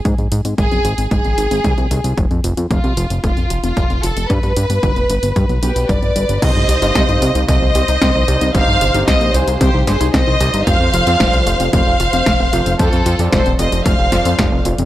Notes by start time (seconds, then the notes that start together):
0.05 G#2 G#3, kick, closed hi-hat
0.18 G#2 C4, closed hi-hat
0.32 G#2 D#4, closed hi-hat
0.45 G#2 C4, closed hi-hat
0.58 G#1 G#3 G#4, kick, closed hi-hat
0.71 F#1 C4, closed hi-hat
0.85 G#1 D#4, closed hi-hat
0.98 G#1 C4, closed hi-hat
1.11 G#1 G#3 G#4, kick, closed hi-hat
1.25 G#1 C4, closed hi-hat
1.38 G#1 D#4, closed hi-hat
1.51 G#1 C4, closed hi-hat
1.64 C2 G#3, kick, closed hi-hat
1.78 C2 C4, closed hi-hat
1.91 C2 D#4, closed hi-hat
2.04 C2 C4, closed hi-hat
2.17 F1 A3, kick, closed hi-hat
2.31 F2 C4, closed hi-hat
2.44 F1 F4, closed hi-hat
2.57 F2 C4, closed hi-hat
2.71 F1 A3 F4, kick, closed hi-hat
2.84 C2 C4, closed hi-hat
2.97 F1 F4, closed hi-hat
3.10 F1 C4, closed hi-hat
3.24 F1 A3 F4, kick, closed hi-hat
3.37 F1 C4, closed hi-hat
3.50 F1 F4, closed hi-hat
3.63 F1 C4 F4, closed hi-hat
3.77 F1 A3, kick, closed hi-hat
3.90 F1 C4, closed hi-hat
4.03 F1 F4 A4, closed hi-hat
4.17 F1 C4, closed hi-hat
4.30 G2 G3 B4, kick, closed hi-hat
4.43 G2 B3, closed hi-hat
4.56 G2 D4, closed hi-hat
4.70 G2 B3, closed hi-hat
4.83 G1 G3, kick, closed hi-hat
4.96 F1 B3, closed hi-hat
5.10 G1 D4, closed hi-hat
5.23 G1 B3, closed hi-hat
5.36 G2 G3, kick, closed hi-hat
5.49 B1 B3, closed hi-hat
5.63 B1 D4 G4 B4, closed hi-hat
5.76 B1 B3, closed hi-hat
5.89 G1 G3 B4 D5, kick, closed hi-hat
6.02 G1 B3, closed hi-hat
6.16 G1 D4, closed hi-hat
6.29 G1 B3, closed hi-hat
6.42 C2 C3 C4 D#4 G4 C5 D#5, kick, closed hi-hat, crash
6.56 G1 D#4
6.69 C2 G4, closed hi-hat
6.82 G1 C3 D#4 G4 C5 F5, closed hi-hat
6.95 C2 C4, kick, snare, closed hi-hat
7.09 G1 D#4, closed hi-hat
7.22 C2 G4, closed hi-hat
7.35 C2 D#4, closed hi-hat
7.48 C2 C4 C5 D#5, kick, closed hi-hat
7.62 C2 D#4
7.75 C2 G4, closed hi-hat
7.88 C2 D#4, closed hi-hat
8.02 C2 C4, kick, snare, closed hi-hat
8.15 C2 D#4
8.28 C2 C3 D#4 G4 C5 D5, closed hi-hat
8.41 C2 D#4, closed hi-hat
8.55 G1 C3 C4 D#4 G4 C5 D#5 F5, kick, closed hi-hat
8.68 G1 D#4
8.81 G1 G4, closed hi-hat
8.94 G1 C3 D#4 G4 C5 F5, closed hi-hat
9.08 C2 C4 C5 D#5, kick, snare, closed hi-hat
9.21 A#1 D#4, closed hi-hat
9.34 C2 G4 G#4 C5, closed hi-hat
9.48 C2 D#4, closed hi-hat
9.61 C2 C4 G4 C5, kick, closed hi-hat
9.74 C2 D#4
9.87 G1 G4 G#4 C5, snare, closed hi-hat
10.01 C2 D#4, closed hi-hat
10.14 C2 C4 C5 D#5, kick, snare, closed hi-hat
10.27 C2 D#4
10.40 C2 D#4 G4 C5 D5, closed hi-hat
10.54 G1 D#4, closed hi-hat
10.67 F1 F3 A3 C4 F4 A4 C5 F5, kick, closed hi-hat
10.80 F2 C4
10.94 F1 F4, closed hi-hat
11.07 F2 F3 C4 F4 A4 D5, closed hi-hat
11.20 F1 A3, kick, snare, closed hi-hat
11.33 C2 C4, closed hi-hat
11.47 F1 F4, closed hi-hat
11.60 F1 C4, closed hi-hat
11.73 F1 A3 C5 F5, kick, closed hi-hat
11.87 F1 C4
12.00 F1 F4, closed hi-hat
12.13 F1 C4, closed hi-hat
12.26 F1 A3, kick, snare, closed hi-hat
12.40 F1 C4
12.53 F1 F3 C4 F4 A4 C5, closed hi-hat
12.66 F1 C4, closed hi-hat
12.79 F2 F3 A3 C4 F4 A4 C5, kick, closed hi-hat
12.93 F2 C4, closed hi-hat
13.06 F2 F4, closed hi-hat
13.19 F2 F3 C4 F4 A4 D5, closed hi-hat
13.33 F1 A3 A4 C5, kick, snare, closed hi-hat
13.46 D#1 C4, closed hi-hat
13.59 F1 F4 C5 D#5, closed hi-hat
13.72 F1 C4, closed hi-hat
13.86 F1 A3 C5 F5, kick, closed hi-hat
13.99 F1 C4
14.12 F1 F3 C4 F4 A4 D5, snare, closed hi-hat
14.25 F2 C4, closed hi-hat
14.39 F1 A3, kick, snare, closed hi-hat
14.52 F1 C4
14.65 F1 F4, closed hi-hat
14.78 F1 C4, closed hi-hat